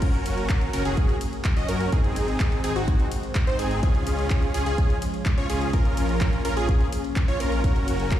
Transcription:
Already playing: A#3 C#4
0.02 F#3 C#4 F#4 A#4, kick, closed hi-hat, crash, ride
0.14 closed hi-hat
0.26 open hi-hat, ride
0.38 closed hi-hat
0.49 kick, clap, closed hi-hat, ride
0.61 closed hi-hat
0.73 F#1 C#4 F#4 A#4, open hi-hat, ride
0.85 F#1 C#4 F#4 G#4, closed hi-hat
0.97 kick, closed hi-hat, ride
1.09 closed hi-hat
1.21 open hi-hat, ride
1.33 closed hi-hat
1.45 kick, clap, closed hi-hat, ride
1.57 F#1 C#4 F#4 D#5, closed hi-hat
1.69 F#2 C#4 F#4 A#4, open hi-hat, ride
1.81 closed hi-hat
1.92 G#1 D#3 G#3 C4 D#4 G#4, kick, closed hi-hat, ride
2.04 closed hi-hat
2.16 open hi-hat, ride
2.28 closed hi-hat
2.40 kick, clap, closed hi-hat, ride
2.52 closed hi-hat
2.64 G#1 C4 D#4 G#4, open hi-hat, ride
2.76 G#1 C4 D#4 F#4, closed hi-hat
2.88 kick, closed hi-hat, ride
3.00 closed hi-hat
3.12 open hi-hat, ride
3.23 closed hi-hat
3.35 kick, clap, closed hi-hat, ride
3.47 G#1 C4 D#4 C5, closed hi-hat
3.59 G#1 C4 D#4 G#4, open hi-hat, ride
3.71 closed hi-hat
3.83 C#2 F3 G#3 C#4 F4 G#4, kick, closed hi-hat, ride
3.95 closed hi-hat
4.07 open hi-hat, ride
4.19 closed hi-hat
4.30 kick, clap, closed hi-hat, ride
4.42 closed hi-hat
4.54 C#2 C#4 F4 G#4, open hi-hat, ride
4.66 C#2 C#4 F4 G#4, closed hi-hat
4.78 kick, closed hi-hat, ride
4.90 closed hi-hat
5.02 open hi-hat, ride
5.14 closed hi-hat
5.26 kick, clap, closed hi-hat, ride
5.38 C#2 C#4 F4 C#5, closed hi-hat
5.50 C#2 C#4 F4 G#4, open hi-hat, ride
5.61 closed hi-hat
5.73 A#1 A#3 C#4 F4 A#4, kick, closed hi-hat, ride
5.85 closed hi-hat
5.97 open hi-hat, ride
6.09 closed hi-hat
6.21 kick, clap, closed hi-hat, ride
6.33 closed hi-hat
6.45 A#1 C#4 F4 A#4, open hi-hat, ride
6.57 A#1 C#4 F4 G#4, closed hi-hat
6.69 kick, closed hi-hat, ride
6.81 closed hi-hat
6.93 open hi-hat, ride
7.04 closed hi-hat
7.16 kick, clap, closed hi-hat, ride
7.28 A#1 C#4 F4 C#5, closed hi-hat
7.40 A#1 C#4 F4 A#4, open hi-hat, ride
7.52 closed hi-hat
7.64 F#3 C#4 F#4 A#4, kick, closed hi-hat, ride
7.76 closed hi-hat
7.88 open hi-hat, ride
8.00 closed hi-hat
8.11 kick, clap, closed hi-hat, ride

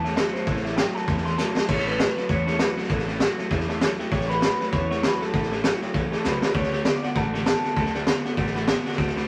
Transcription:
Already playing: E2
0.04 A2 E3 A3 C#4 E4 C#5 E5 A5, snare
0.16 A2 E3 F#3 A3 C#4 E4 C#5 E5 A5, snare, hi-hat pedal
0.33 A2 F#3 A3 C#4 E4 C5 E5 A5, muted upright bass stroke, snare
0.47 A1 A2 E3 A3 C#4 E4 C#5 E5 A5, kick, snare
0.56 snare
0.64 A2 E3 A3 C#4 E4 C#5 E5 A5, snare
0.76 A2 F#3 A3 C#4 E4 E5 G5 A5, snare, hi-hat pedal
0.95 A2 F#3 A3 C#4 E4 C#5 E5 A5, muted upright bass stroke, snare
1.07 E2 A2 E3 A3 C#4 E4 C#5 E5 B5, kick, snare
1.17 snare
1.25 A2 E3 A3 C#4 E4 C#5 E5 A5 C6, snare
1.38 A2 E3 F#3 A3 C#4 E4 C#5 E5 A5, snare, hi-hat pedal
1.56 A2 F#3 A3 C#4 E4 C#5 E5 A5, muted upright bass stroke, snare
1.68 A1 A2 E3 A3 C#4 E4 C#5 E5 A5, kick, snare, crash
1.78 snare
1.86 A2 E3 A3 C#4 E4 B4 C#5 E5 A5, snare
1.98 A2 E3 F#3 A3 C#4 E4 C#5 E5 A5, snare, hi-hat pedal
2.16 A2 F#3 A3 C#4 E4 C#5 E5 A5, muted upright bass stroke, snare
2.29 E2 A2 E3 A3 C#4 E4 C#5 E5 A5, kick, snare
2.46 A2 E3 A3 C#4 E4 C#5 E5 A5, snare
2.59 A2 E3 F#3 A3 C#4 E4 B4 C#5 E5 A5, snare, hi-hat pedal
2.77 A2 F#3 A3 C#4 E4 A4 E5 A5, muted upright bass stroke, snare
2.83 snare
2.89 A1 A2 E3 A3 C#4 E4 C#5 E5 A5, kick, snare
2.99 snare
3.07 A2 E3 A3 C#4 E4 C#5 E5 G5, snare
3.20 A2 E3 F#3 A3 C#4 E4 C#5 E5 F#5, snare, hi-hat pedal
3.38 A2 F#3 A3 C#4 E4 C#5 E5 A5, muted upright bass stroke, snare
3.51 E2 A2 E3 A3 C#4 E4 C#5 E5 A5, kick, snare
3.60 snare
3.68 A2 E3 A3 C#4 E4 C#5 E5 A5, snare
3.81 A2 E3 F#3 A3 C#4 E4 C#5 E5 A5, snare, hi-hat pedal
3.99 A2 F#3 A3 C#4 E4 C#5 E5 G5, muted upright bass stroke, snare
4.11 A1 A2 E3 A3 C#4 E4 C#5 E5 G5, kick, snare
4.20 snare
4.29 A2 E3 A3 C#4 E4 B4 C#5 E5 F#5, snare
4.42 A2 E3 F#3 A3 C#4 E4 C#5 E5 A5, snare, hi-hat pedal
4.60 A2 F#3 A3 C#4 E4 C#5 E5 A5, muted upright bass stroke, snare
4.72 E2 A2 E3 A3 C#4 E4 C#5 E5 A5, kick, snare
4.90 A2 E3 A3 C#4 E4 C#5 E5 F#5, snare
5.03 A2 E3 F#3 A3 C#4 E4 B4 C#5 E5 A5, snare, hi-hat pedal
5.21 A2 F#3 A3 C#4 E4 A4 E5 A5, muted upright bass stroke, snare
5.33 A1 A2 E3 A3 C#4 E4 C#5 E5 F#5, kick, snare
5.43 snare
5.51 A2 E3 A3 C#4 E4 C#5 E5 B5, snare
5.64 A2 E3 F#3 A3 C#4 E4 C#5 E5 A5, snare, hi-hat pedal
5.82 A2 F#3 A3 C#4 E4 C#5 E5 G5, muted upright bass stroke, snare
5.94 B1 A2 E3 A3 C#4 E4 C#5 E5 A5, kick, snare
6.11 A2 E3 A3 C#4 E4 A4 C#5 E5 A5, muted upright bass stroke, snare
6.24 C#2 A2 E3 F#3 A3 C#4 E4 B4 C#5 E5 A5, snare, hi-hat pedal
6.41 A2 F#3 A3 C#4 E4 C#5 E5 A5, muted upright bass stroke, snare
6.54 D2 D3 A3 D4 F#4 C#5 F#5 A5, kick, snare
6.63 snare
6.72 D3 A3 D4 F#4 F#5 A5, snare
6.85 D3 A3 B3 D4 F#4 D5 F#5 A5, snare, hi-hat pedal
7.03 D3 A3 B3 D4 F#4 D5 F#5 A5, muted upright bass stroke, snare
7.15 A1 D3 A3 D4 F#4 D5 F#5 A5, kick, snare
7.33 D3 A3 D4 F#4 D5 F#5 A5, snare
7.45 D3 A3 B3 D4 F#4 D5 F#5 A5, snare, hi-hat pedal
7.63 D3 A3 B3 D4 F#4 D5 F#5, muted upright bass stroke, snare
7.76 D2 D3 A3 D4 F#4 D5 F#5 B5, kick, snare
7.86 snare
7.94 D3 A3 D4 F#4 D5 F#5 A5, snare
8.07 D3 A3 B3 F#4 D5 F#5 A5, snare, hi-hat pedal
8.24 D3 A3 B3 D4 F#4 D5 F#5 A5, muted upright bass stroke, snare
8.37 A1 D3 A3 D4 F#4 D5 F#5 A5, kick, snare
8.46 snare
8.55 D3 A3 D4 F#4 D5 F#5 B5, snare
8.67 D3 A3 B3 F#4 D5 F#5 A5, snare, hi-hat pedal
8.85 D3 A3 B3 D4 F#4 D5 F#5 A5, muted upright bass stroke, snare
8.92 snare
8.98 D2 D3 A3 D4 F#4 D5 F#5 A5, kick, snare
9.07 snare
9.15 D3 A3 D4 F#4 D5 F#5 B5, snare

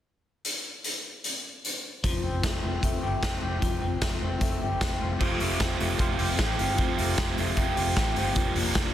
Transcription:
0.45 closed hi-hat
0.84 closed hi-hat
1.24 closed hi-hat
1.65 closed hi-hat
2.04 F1 F3, kick, closed hi-hat
2.23 F1 C4
2.43 F1 A3, kick, snare, closed hi-hat
2.63 F1 C4
2.83 F1 A3, kick, closed hi-hat
3.03 G1 G4
3.23 F1 C4, kick, snare, closed hi-hat
3.42 F1 G4
3.62 F1 F3, kick, closed hi-hat
3.82 F1 C4
4.02 F1 A3, kick, snare, closed hi-hat
4.22 F1 C4
4.41 F1 A3, kick, closed hi-hat
4.62 G1 G4
4.81 F1 C4, kick, snare, closed hi-hat
5.01 F1 F4
5.11 G4
5.19 F1 F3 A3 C4 F4 G4, kick, crash
5.39 F1 A3 C4 F4 G4, open hi-hat
5.59 F1 F3 A3 C4 F4 G4, kick, snare, closed hi-hat
5.79 F1 A3 C4 F4 G4, open hi-hat
5.98 F1 A3 C4 F4 G4, kick, closed hi-hat
6.10 G4
6.18 F1 C4 F4 G4, open hi-hat
6.38 A1 F3 A3 C4 F4 G4, kick, snare, closed hi-hat
6.58 G1 C4 F4 G4, open hi-hat
6.78 F1 F3 A3 C4 F4 G4, kick, closed hi-hat
6.98 F1 A3 C4 F4 G4, open hi-hat
7.17 F1 F3 A3 C4 F4 G4, kick, snare, closed hi-hat
7.37 F1 A3 C4 F4 G4, open hi-hat
7.57 F1 A3 C4 F4 G4, kick, closed hi-hat
7.76 F1 C4 F4 G4, open hi-hat
7.96 A1 F3 A3 C4 F4 G4, kick, snare, closed hi-hat
8.16 G1 C4 F4 G4, open hi-hat
8.35 F1 F3 G3 A#3 D4 G4, kick, closed hi-hat
8.54 F1 A#3 D4 G4, open hi-hat
8.74 F1 F3 G3 A#3 D4 G4, kick, snare, closed hi-hat

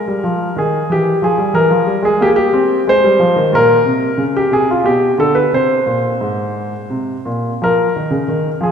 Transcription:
Already playing: A#4
0.08 G3
0.24 F3
0.56 D#3 G#4
0.90 E3 G4
1.22 F3 G#4
1.38 G3
1.54 E3 A#4
1.71 F3
1.87 G3
2.02 G#3 G#4
2.21 A#3 G4
2.27 G#4
2.36 G4
2.53 C4
2.87 G#3 C5
3.04 G3
3.20 F3
3.36 D#3
3.53 A#2 A#4
3.86 C3
4.18 C#3
4.37 G4
4.50 C3 G#4
4.71 F4
4.84 B2 G4
5.18 D3 A4
5.35 B4
5.52 C3 C5
5.86 A#2
6.21 G#2
6.90 C3
7.25 A#2
7.62 F3 A#4
7.96 D#3
8.11 C#3
8.28 D#3
8.61 F3 G#4

